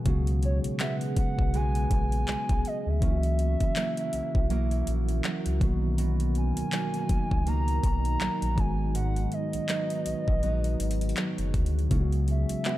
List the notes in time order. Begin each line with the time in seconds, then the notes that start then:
Already playing: F#3 B3
0.04 C#2 C#3 F#3 G#3 B3 F#4 G#4, kick, closed hi-hat
0.09 F#4
0.27 closed hi-hat
0.43 C#5, closed hi-hat
0.64 B1, closed hi-hat
0.80 G#3 B3 F#4 E5, clap, closed hi-hat
1.01 closed hi-hat
1.16 B1 F#5, kick, closed hi-hat
1.39 B1, kick
1.54 G#3 B3 F#4 G#5, closed hi-hat
1.75 closed hi-hat
1.91 A#1 G#5, kick, closed hi-hat
2.12 closed hi-hat
2.28 B1 G#3, clap, closed hi-hat
2.49 B1, kick, closed hi-hat
2.65 D#5, closed hi-hat
2.80 D#5
2.86 D2 E5
3.00 C#2 C#3 E3 F#3 A#3 C#4 A#4, kick, closed hi-hat
3.05 E4
3.12 F#4
3.23 closed hi-hat
3.39 closed hi-hat
3.60 B1, kick, closed hi-hat
3.76 F#3 A#3 E4, clap, closed hi-hat
3.97 closed hi-hat
4.13 B1, closed hi-hat
4.35 B1, kick
4.50 F#3 A#3 E4, closed hi-hat
4.71 closed hi-hat
4.87 A#1, closed hi-hat
5.09 closed hi-hat
5.24 F#3, clap, closed hi-hat
5.46 C#2, closed hi-hat
5.60 B1 B2 D#3 F#3 A#3 B3 D#4, kick, closed hi-hat
5.65 F#4
5.98 B2, closed hi-hat
6.20 closed hi-hat
6.35 G#5, closed hi-hat
6.57 C#2, closed hi-hat
6.72 F#3 A#3 D#4, clap, closed hi-hat
6.94 closed hi-hat
7.09 C#2, kick, closed hi-hat
7.31 C#2, kick
7.46 F#3 A#3 D#4 A#5, closed hi-hat
7.68 closed hi-hat
7.83 B1 A#5, kick, closed hi-hat
8.05 closed hi-hat
8.20 A#1 F#3, clap, closed hi-hat
8.42 A#1, closed hi-hat
8.56 G#1 G#2 D#3 F#3 G#3 B3 G#4 G#5, kick, closed hi-hat
8.61 F#4
8.95 G#2 F#5, closed hi-hat
9.16 closed hi-hat
9.32 D#5, closed hi-hat
9.53 A#1, closed hi-hat
9.69 F#3 B3 D#4, clap, closed hi-hat
9.90 closed hi-hat
10.06 A#1, closed hi-hat
10.28 A#1, kick
10.43 F#3 B3 D#4, closed hi-hat
10.64 closed hi-hat
10.80 G#1, closed hi-hat
10.91 closed hi-hat
11.01 closed hi-hat
11.09 closed hi-hat
11.17 F#3, clap, closed hi-hat
11.38 F#1, closed hi-hat
11.54 D2, kick, closed hi-hat
11.66 closed hi-hat
11.79 closed hi-hat
11.89 C#2 C#3 F#3 G#3 B3, kick, closed hi-hat
11.94 E4
12.00 F#4
12.12 closed hi-hat
12.28 E5, closed hi-hat
12.49 B1, closed hi-hat
12.65 G#3 B3 F#4, clap, closed hi-hat